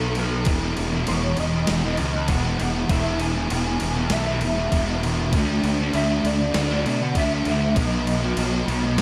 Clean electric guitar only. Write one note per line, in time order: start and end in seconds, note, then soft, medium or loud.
0.00 0.14 A4 medium
1.08 1.39 C#5 medium
1.40 2.29 D#5 medium
2.30 2.91 F#5 loud
2.91 3.20 E5 loud
3.21 3.50 G#5 loud
3.51 4.12 G#5 loud
4.13 4.99 E5 medium
5.95 6.26 E5 loud
6.25 7.03 D5 loud
7.03 7.17 F#5 loud
7.17 7.75 E5 loud
7.76 9.02 D#5 medium